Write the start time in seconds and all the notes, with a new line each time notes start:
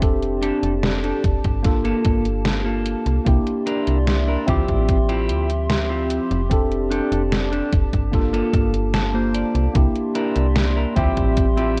Already playing: F1 G4
0.01 C4 D4 G4 A4 D5 A5, kick, closed hi-hat
0.23 closed hi-hat
0.42 D4 G4 A4, closed hi-hat
0.63 F1, closed hi-hat
0.83 snare, closed hi-hat
1.03 D4 G4 A4, closed hi-hat
1.24 F1, kick, closed hi-hat
1.44 G1, muted clean electric guitar stroke, kick, closed hi-hat
1.63 A#3 D4 F4 A4, muted clean electric guitar stroke, kick, snare, closed hi-hat
1.84 A#3 F4 A4, closed hi-hat
2.05 G1, kick, closed hi-hat
2.25 closed hi-hat
2.45 snare, closed hi-hat
2.65 A#3 F4 A4
2.86 closed hi-hat
3.06 C2, closed hi-hat
3.25 C2 A#3 D4 E4 G4 D5 E5 C6, kick, closed hi-hat
3.47 closed hi-hat
3.66 D4 E4 A#4, closed hi-hat
3.87 C2, closed hi-hat
4.07 snare, closed hi-hat
4.28 D4 E4 A#4
4.46 D2 F3 C4 E4 F4 G4 E5, kick, closed hi-hat
4.68 A1, kick, closed hi-hat
4.88 kick, closed hi-hat
5.09 C4 E4 F4 G4, closed hi-hat
5.29 D2, closed hi-hat
5.50 closed hi-hat
5.70 snare, closed hi-hat
5.89 C4 E4 F4 G4
6.10 closed hi-hat
6.31 F1, closed hi-hat
6.49 C4 D4 G4 A4 D5 A5, kick, closed hi-hat
6.71 closed hi-hat
6.90 D4 G4 A4, closed hi-hat
7.12 F1, closed hi-hat
7.32 snare, closed hi-hat
7.52 D4 G4 A4, closed hi-hat
7.72 F1, kick, closed hi-hat
7.93 G1, muted clean electric guitar stroke, kick, closed hi-hat
8.11 A#3 D4 F4 A4, muted clean electric guitar stroke, kick, snare, closed hi-hat
8.33 A#3 F4 A4, closed hi-hat
8.53 G1, kick, closed hi-hat
8.74 closed hi-hat
8.94 A5, snare, closed hi-hat
9.14 A#3 F4 C5
9.34 D5, closed hi-hat
9.55 C2, closed hi-hat
9.73 C2 A#3 D4 E4 G4 D5 E5 C6, kick, closed hi-hat
9.95 closed hi-hat
10.15 D4 E4 A#4, closed hi-hat
10.36 C2, closed hi-hat
10.56 snare, closed hi-hat
10.76 D4 E4 A#4
10.96 D2 F3 C4 E4 F4 G4 E5, kick, closed hi-hat
11.17 A1, kick, closed hi-hat
11.37 kick, closed hi-hat
11.57 C4 E4 F4 G4, closed hi-hat